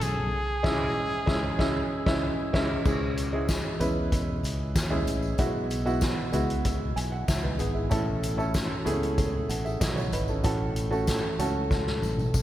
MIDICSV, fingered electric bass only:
0, 0, Header, 1, 2, 480
1, 0, Start_track
1, 0, Key_signature, 4, "minor"
1, 0, Tempo, 632111
1, 252, Time_signature, 4, 2, 24, 8
1, 9433, End_track
2, 0, Start_track
2, 0, Title_t, "Fingered electric bass"
2, 0, Program_c, 0, 33
2, 10, Note_on_c, 0, 35, 77
2, 234, Note_off_c, 0, 35, 0
2, 488, Note_on_c, 0, 37, 99
2, 653, Note_off_c, 0, 37, 0
2, 966, Note_on_c, 0, 37, 95
2, 1132, Note_off_c, 0, 37, 0
2, 1208, Note_on_c, 0, 37, 95
2, 1373, Note_off_c, 0, 37, 0
2, 1567, Note_on_c, 0, 37, 92
2, 1733, Note_off_c, 0, 37, 0
2, 1929, Note_on_c, 0, 37, 86
2, 2094, Note_off_c, 0, 37, 0
2, 2167, Note_on_c, 0, 37, 103
2, 2740, Note_off_c, 0, 37, 0
2, 2887, Note_on_c, 0, 40, 92
2, 3339, Note_off_c, 0, 40, 0
2, 3366, Note_on_c, 0, 37, 82
2, 3592, Note_off_c, 0, 37, 0
2, 3610, Note_on_c, 0, 39, 81
2, 3834, Note_off_c, 0, 39, 0
2, 3848, Note_on_c, 0, 33, 70
2, 4073, Note_off_c, 0, 33, 0
2, 4089, Note_on_c, 0, 35, 88
2, 4661, Note_off_c, 0, 35, 0
2, 4812, Note_on_c, 0, 37, 74
2, 5262, Note_off_c, 0, 37, 0
2, 5289, Note_on_c, 0, 35, 97
2, 5514, Note_off_c, 0, 35, 0
2, 5528, Note_on_c, 0, 37, 85
2, 5753, Note_off_c, 0, 37, 0
2, 5769, Note_on_c, 0, 32, 82
2, 5994, Note_off_c, 0, 32, 0
2, 6011, Note_on_c, 0, 33, 110
2, 6582, Note_off_c, 0, 33, 0
2, 6728, Note_on_c, 0, 37, 77
2, 7179, Note_off_c, 0, 37, 0
2, 7208, Note_on_c, 0, 33, 88
2, 7433, Note_off_c, 0, 33, 0
2, 7450, Note_on_c, 0, 35, 78
2, 7674, Note_off_c, 0, 35, 0
2, 7687, Note_on_c, 0, 32, 86
2, 7912, Note_off_c, 0, 32, 0
2, 7930, Note_on_c, 0, 33, 89
2, 8500, Note_off_c, 0, 33, 0
2, 8648, Note_on_c, 0, 37, 73
2, 9099, Note_off_c, 0, 37, 0
2, 9129, Note_on_c, 0, 33, 90
2, 9353, Note_off_c, 0, 33, 0
2, 9371, Note_on_c, 0, 35, 75
2, 9433, Note_off_c, 0, 35, 0
2, 9433, End_track
0, 0, End_of_file